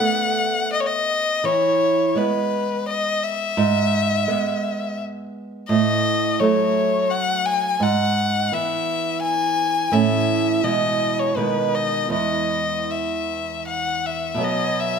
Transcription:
0.00 1.40 A3 soft
0.00 1.40 B3 soft
0.00 0.72 F#5 medium
0.73 0.82 D#5 medium
0.81 0.88 C#5 soft
0.87 1.47 D#5 medium
1.44 2.14 E3 medium
1.44 2.19 C#5 medium
2.15 3.53 G#3 soft
2.15 3.54 B3 soft
2.15 2.88 B4 soft
2.88 3.25 D#5 medium
3.23 5.00 E5 medium
3.57 4.26 G#2 medium
4.27 5.65 G#3 soft
4.27 5.66 B3 soft
5.69 6.38 A2 medium
5.69 6.42 D#5 medium
6.40 7.77 F#3 soft
6.40 7.77 A3 soft
6.40 7.12 C#5 medium
7.10 7.48 F#5 medium
7.46 7.84 G#5 medium
7.80 8.49 G#2 medium
7.80 8.55 F#5 medium
8.52 9.89 E3 soft
8.52 9.89 B3 soft
8.52 9.22 E5 medium
9.22 9.94 G#5 medium
9.92 10.61 A2 soft
9.92 10.59 E3 soft
9.92 10.60 C#4 soft
9.92 10.66 E5 medium
10.63 11.34 B2 soft
10.63 11.33 E3 soft
10.63 11.33 G#3 soft
10.63 11.21 D#5 soft
11.19 11.38 C#5 soft
11.36 12.10 B2 soft
11.36 12.09 D#3 soft
11.36 12.09 G#3 soft
11.36 11.76 B4 soft
11.74 12.13 D#5 soft
12.09 14.38 E2 soft
12.09 14.37 E3 soft
12.09 14.39 G#3 soft
12.13 12.93 D#5 soft
12.92 13.67 E5 soft
13.68 14.08 F#5 soft
14.06 14.46 E5 soft
14.35 14.99 B2 soft
14.35 14.99 F#3 soft
14.41 14.99 B3 soft
14.41 14.82 D#5 medium
14.80 14.99 E5 soft

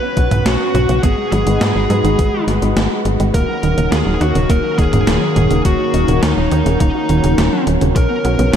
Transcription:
0.00 1.01 B3 medium
0.00 0.15 B3 medium
0.00 1.00 C#4 medium
0.00 7.92 F#4 medium
0.00 0.48 B4 loud
0.17 0.29 B1 medium
0.17 0.31 F#3 loud
0.17 kick loud
0.17 closed hi-hat medium
0.31 0.43 B1 medium
0.31 0.39 C#3 loud
0.31 closed hi-hat medium
0.31 mid tom medium
0.46 0.58 B1 loud
0.46 0.53 C#4 medium
0.46 1.03 F#4 medium
0.46 snare loud
0.46 closed hi-hat medium
0.60 0.72 B3 medium
0.75 0.87 B1 loud
0.75 0.87 F#3 medium
0.75 closed hi-hat medium
0.75 mid tom medium
0.89 1.01 B1 medium
0.89 0.96 C#3 loud
0.89 closed hi-hat medium
1.03 1.16 G#1 loud
1.03 3.32 G#3 medium
1.03 1.11 B3 loud
1.03 3.32 D#4 medium
1.03 1.31 G#4 medium
1.03 3.32 B4 medium
1.03 kick loud
1.03 closed hi-hat medium
1.18 1.30 G#3 medium
1.32 1.44 G#1 medium
1.32 1.46 F#3 loud
1.32 2.44 G#4 medium
1.32 closed hi-hat medium
1.47 1.59 G#1 medium
1.47 1.54 D#3 loud
1.47 closed hi-hat medium
1.61 1.73 G#2 loud
1.61 1.68 B3 medium
1.61 snare loud
1.61 closed hi-hat medium
1.75 1.88 G#1 medium
1.75 1.88 G#3 medium
1.90 2.02 G#2 medium
1.90 2.02 F#3 medium
1.90 closed hi-hat medium
2.04 2.16 G#1 medium
2.04 2.12 D#3 loud
2.04 closed hi-hat medium
2.19 2.31 G#1 loud
2.19 2.26 B3 medium
2.19 kick loud
2.19 closed hi-hat medium
2.33 2.45 G#3 medium
2.47 2.60 G#1 medium
2.47 2.61 F#3 loud
2.47 snare soft
2.47 closed hi-hat medium
2.62 2.74 G#1 medium
2.62 2.69 D#3 loud
2.62 closed hi-hat medium
2.76 2.89 G#1 loud
2.76 2.84 B3 medium
2.76 snare loud
2.76 closed hi-hat medium
2.91 3.03 G#3 medium
3.05 3.17 G#1 medium
3.05 3.17 F#3 medium
3.05 closed hi-hat medium
3.20 3.32 G#1 medium
3.20 3.27 D#3 loud
3.20 closed hi-hat medium
3.34 3.46 D#1 medium
3.34 7.92 D#3 medium
3.34 7.92 A#3 medium
3.34 3.42 A#3 loud
3.34 8.56 C#4 medium
3.34 3.92 A#4 loud
3.34 kick loud
3.34 closed hi-hat medium
3.49 3.61 F#3 medium
3.63 3.75 D#1 medium
3.63 3.77 D#3 loud
3.63 closed hi-hat medium
3.77 3.90 D#1 medium
3.77 3.85 C#3 loud
3.77 closed hi-hat medium
3.92 4.04 D#2 loud
3.92 3.99 A#3 medium
3.92 4.22 G#4 loud
3.92 snare loud
3.92 closed hi-hat medium
4.06 4.18 D#1 medium
4.06 4.18 F#3 medium
4.21 4.33 D#2 loud
4.21 4.33 D#3 medium
4.21 4.51 F#4 medium
4.21 closed hi-hat medium
4.35 4.47 D#1 medium
4.35 4.42 C#3 loud
4.35 closed hi-hat medium
4.50 4.62 D#1 medium
4.50 4.57 A#3 medium
4.50 4.78 A#4 loud
4.50 kick loud
4.50 closed hi-hat medium
4.64 4.76 F#3 medium
4.78 4.91 D#1 medium
4.78 4.92 D#3 loud
4.78 5.61 G#4 loud
4.78 kick loud
4.78 closed hi-hat medium
4.93 5.05 D#1 medium
4.93 5.00 C#3 loud
4.93 closed hi-hat medium
4.93 mid tom medium
5.07 5.19 D#1 loud
5.07 5.15 A#3 medium
5.07 snare loud
5.07 closed hi-hat medium
5.22 5.34 F#3 medium
5.36 5.48 D#1 medium
5.36 5.48 D#3 medium
5.36 closed hi-hat medium
5.36 mid tom medium
5.51 5.63 D#1 medium
5.51 5.58 C#3 loud
5.51 closed hi-hat medium
5.65 5.77 D#1 medium
5.65 5.72 A#3 loud
5.65 6.23 F#4 loud
5.65 kick loud
5.65 closed hi-hat medium
5.79 5.91 F#3 medium
5.94 6.06 D#1 medium
5.94 6.08 D#3 loud
5.94 closed hi-hat medium
6.08 6.20 D#1 medium
6.08 6.15 C#3 loud
6.08 closed hi-hat medium
6.23 6.35 D#2 loud
6.23 6.30 A#3 medium
6.23 6.80 D#4 medium
6.23 snare loud
6.23 closed hi-hat medium
6.37 6.49 D#1 medium
6.37 6.49 F#3 medium
6.51 6.64 D#2 medium
6.51 6.63 D#3 medium
6.51 closed hi-hat medium
6.66 6.78 D#1 medium
6.66 6.73 C#3 loud
6.66 closed hi-hat medium
6.80 6.93 D#1 medium
6.80 6.88 A#3 medium
6.80 7.63 D#4 medium
6.80 kick loud
6.80 closed hi-hat medium
6.95 7.07 F#3 medium
7.09 7.21 D#1 medium
7.09 7.23 D#3 loud
7.09 closed hi-hat medium
7.24 7.36 D#1 medium
7.24 7.31 C#3 loud
7.24 closed hi-hat medium
7.38 7.50 D#1 loud
7.38 7.45 A#3 medium
7.38 snare loud
7.38 closed hi-hat medium
7.53 7.64 F#3 medium
7.67 7.79 D#1 loud
7.67 7.79 D#3 medium
7.67 closed hi-hat medium
7.81 7.94 D#1 medium
7.81 7.89 C#3 loud
7.81 closed hi-hat medium
7.95 8.08 B1 loud
7.95 8.56 B3 medium
7.95 8.03 C#4 loud
7.95 8.56 F#4 medium
7.95 8.53 A#4 loud
7.95 kick loud
7.95 closed hi-hat medium
8.10 8.22 B3 medium
8.25 8.37 B1 medium
8.25 8.38 F#3 loud
8.25 closed hi-hat medium
8.39 8.51 B1 medium
8.39 8.46 C#3 loud
8.39 closed hi-hat medium
8.53 8.56 C#4 medium

